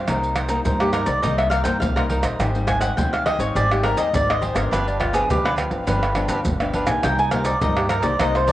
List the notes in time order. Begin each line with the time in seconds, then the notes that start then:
0.08 C2 C3 G3 A#3 D#4 A#4 C5 D#5, pandeiro, tamborim, maracas, surdo
0.24 pandeiro, maracas
0.36 D#4 A#4 C5 D#5, pandeiro, tamborim, maracas
0.49 G3 A#3 D#4 A#4 C5 D#5, pandeiro, maracas
0.65 G2 D#4 A#4 C5 D#5, pandeiro, maracas, surdo
0.80 G3 A#3 D#4 G4, pandeiro, tamborim, maracas
0.93 D#4 A#4 C5 D#5, pandeiro, tamborim, maracas
1.06 C2 A#4 C5 D5 D#5, pandeiro, maracas
1.23 C2 C3 G3 A#3 D#4 A#4 C5 D#5, pandeiro, maracas, surdo
1.38 E5, pandeiro, tamborim, maracas
1.50 D#4 A#4 C5 D#5 F5, pandeiro, tamborim, maracas
1.64 G2 G3 A#3 D#4 A#4 C5 D#5 G5, pandeiro, maracas
1.80 C2 G2 F5, pandeiro, maracas, surdo
1.96 G3 A#3 D#4 A#4 C5 D#5, pandeiro, tamborim, maracas
2.09 D#4 A#4 C5 D#5, pandeiro
2.23 A#1 A#4 C5 D#5, pandeiro, tamborim, maracas
2.39 G#1 G#2 G3 C4 D#4 G4 C5 D#5 G#5, pandeiro, tamborim, maracas, surdo
2.55 G3 C4 D#4, pandeiro, maracas
2.67 G4 C5 D#5 G#5, pandeiro, tamborim, maracas, surdo
2.81 G4 C5 D#5 F#5 G#5, pandeiro, maracas
2.97 D#2 D#3 G3 C4 D#4 G4 C5 D#5 G5 G#5, pandeiro, maracas, surdo
3.13 F5, pandeiro, tamborim, maracas
3.26 G4 C5 D#5 G#5, pandeiro, tamborim
3.39 G#1 G3 C4 D#4 C5 C#5 D#5 G#5, pandeiro, maracas
3.55 G#1 G#2 G4 C5 D5 D#5 G#5, pandeiro, maracas, surdo
3.71 G3 C4 D#4 G4, pandeiro, tamborim, maracas
3.84 G4 A#4 C5 D#5 G#5, pandeiro, tamborim
3.97 D#2 G4 C5 D#5 G#5, pandeiro, maracas
4.13 G#1 D#3 G3 C4 D#4 D5, pandeiro, maracas, surdo
4.29 C5 D#5 G#5, pandeiro, tamborim, maracas
4.42 G4 C5 D#5 G#5, pandeiro
4.54 G#1 F3 B3 D4 A#4 C5 D#5 G#5, pandeiro, tamborim, maracas
4.71 G1 G2 D4 G4 B4 F5, pandeiro, tamborim, maracas, surdo
4.87 D4, pandeiro, maracas
4.99 D4 F4 G4 B4 F5, pandeiro, tamborim, surdo
5.13 F3 B3 D4 G4 G#4 B4 F5, pandeiro, maracas
5.29 D2 D3 D4 G4 B4 F5, pandeiro, maracas, surdo
5.45 F3 B3 D4 B4, pandeiro, tamborim, maracas
5.56 D4 G4 B4 F5, pandeiro, tamborim, maracas
5.70 G1 G4 B4 F5, pandeiro, maracas
5.87 G1 G2 F3 B3 D4 G4 B4 F5, pandeiro, maracas, surdo
6.03 pandeiro, tamborim, maracas
6.15 F3 B3 D4 G4 B4 F5, pandeiro, tamborim
6.28 D2 D4 G4 B4 F5, pandeiro, maracas
6.45 G1 D3, pandeiro, maracas, surdo
6.60 F3 B3 D4 G4 B4 F5, pandeiro, tamborim, maracas
6.73 D4 G4 B4 F5, pandeiro
6.87 B1 A#3 D#4 G4 B4 F5 G#5, pandeiro, tamborim, maracas
7.03 C2 C3 D#4 A#4 C5 D#5 G5, pandeiro, tamborim, maracas, surdo
7.19 G#5, pandeiro, maracas
7.31 A#3 D#4 G4 A#4 C5 D#5 F5, pandeiro, tamborim, maracas, surdo
7.45 D#4 A#4 C5 D5 D#5, pandeiro, maracas
7.61 G2 A#3 D#4 G4 A#4 C5 D#5, pandeiro, maracas, surdo
7.77 G4, pandeiro, tamborim, maracas
7.89 D#4 A#4 C5 D#5, pandeiro, tamborim, maracas
8.02 C2 A#3 D#4 G4 A#4 C5 D5 D#5, pandeiro, maracas
8.19 C2 C3 A#3 D#4 G4 A#4 C5 D#5, pandeiro, tamborim, maracas, surdo
8.35 C5, pandeiro, tamborim, maracas
8.46 D#4 A#4 C5 D5 D#5, pandeiro, maracas